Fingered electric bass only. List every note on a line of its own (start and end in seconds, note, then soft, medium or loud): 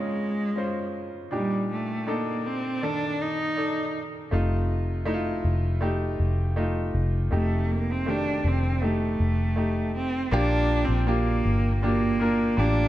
4.32 5.41 F1 medium
5.45 6.16 F1 medium
6.20 6.91 F1 medium
6.94 7.29 F1 medium
7.32 8.41 F1 medium
8.44 9.15 F1 medium
9.20 10.28 F1 medium
10.32 10.84 A#1 loud
10.88 11.41 A#1 medium
11.45 12.53 G1 medium
12.58 12.88 A1 medium